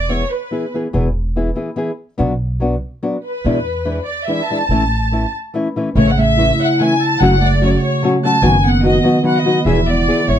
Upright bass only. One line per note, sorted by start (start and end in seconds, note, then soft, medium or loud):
0.00 0.21 E1 medium
0.94 1.48 E1 medium
2.20 2.74 B1 medium
3.45 3.98 E2 medium
4.69 5.24 A1 medium
5.95 6.50 A1 medium
7.21 7.74 F#1 medium
8.42 8.96 F#1 medium
9.65 10.06 E1 medium
10.28 10.39 G#1 medium